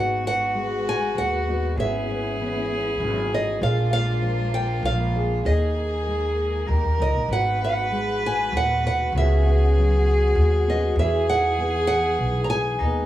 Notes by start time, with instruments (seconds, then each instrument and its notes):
Already playing: upright bass G#1, steel-string acoustic guitar G#2 B3 D#4 F#4, string section G#3 F#4 B4, cello F#4, nylon-string guitar F#5
0.26 steel-string acoustic guitar B3, nylon-string guitar F#5
0.55 steel-string acoustic guitar G#3
0.89 nylon-string guitar G#5
1.15 upright bass D#2, nylon-string guitar F#5
1.48 steel-string acoustic guitar B3 D#4 F#4
1.76 upright bass G#1, steel-string acoustic guitar G#2 B3 C#4 G#4, string section B3 C#4 E4, cello G#4, nylon-string guitar E5
2.09 steel-string acoustic guitar B3
2.39 steel-string acoustic guitar E3
3.00 upright bass G#1, steel-string acoustic guitar F#2
3.31 steel-string acoustic guitar G#2, nylon-string guitar D#5
3.59 upright bass A#1, steel-string acoustic guitar A#2 A#3 D4 G#4, string section G#3 A#3 D4, cello F4
3.63 nylon-string guitar F5
3.92 steel-string acoustic guitar A#3, nylon-string guitar F5
4.22 steel-string acoustic guitar F3
4.54 nylon-string guitar G5
4.83 upright bass A#1, nylon-string guitar F5
5.14 steel-string acoustic guitar A#3 D4 G#4
5.44 upright bass D#2, steel-string acoustic guitar D#3 D#4 G#4, string section D#3 A#3 G#4, cello G#4, nylon-string guitar D#5
5.77 steel-string acoustic guitar D#4
6.07 steel-string acoustic guitar G#3
6.66 upright bass D#2, steel-string acoustic guitar D#3 D#4 A#4, string section G4, cello A#4
6.84 upright bass D#2
6.99 upright bass C#2, steel-string acoustic guitar D#4, nylon-string guitar D#5
7.14 upright bass A#1
7.28 upright bass G#1, steel-string acoustic guitar G#2 B3 D#4, string section G#3 F#4 B4, cello B4
7.32 steel-string acoustic guitar F#4, nylon-string guitar F#5
7.64 nylon-string guitar F#5
7.91 steel-string acoustic guitar G#3
8.26 nylon-string guitar G#5
8.52 upright bass D#2, steel-string acoustic guitar A#2
8.57 nylon-string guitar F#5
8.84 steel-string acoustic guitar B2, nylon-string guitar F#5
9.12 upright bass C#2, string section C#3 B3, steel-string acoustic guitar C#3 B3, cello G#4
9.17 steel-string acoustic guitar C#4 F#4, nylon-string guitar E5
9.47 steel-string acoustic guitar B3
9.77 steel-string acoustic guitar F#3
10.35 upright bass D#2
10.68 steel-string acoustic guitar B3 C#4 F#4, nylon-string guitar D#5
10.96 upright bass E2, string section E3 G#4, steel-string acoustic guitar E3, cello G#4, nylon-string guitar E5
11.00 steel-string acoustic guitar G#4
11.29 steel-string acoustic guitar D#4, nylon-string guitar F#5
11.58 steel-string acoustic guitar B3
11.87 nylon-string guitar F#5
12.19 upright bass B1
12.44 nylon-string guitar A#5
12.50 steel-string acoustic guitar D#4 G#4, nylon-string guitar G#5
12.79 upright bass D#2, steel-string acoustic guitar D#3 B3, string section G#3 B3, cello D#4
12.84 steel-string acoustic guitar D#4 G#4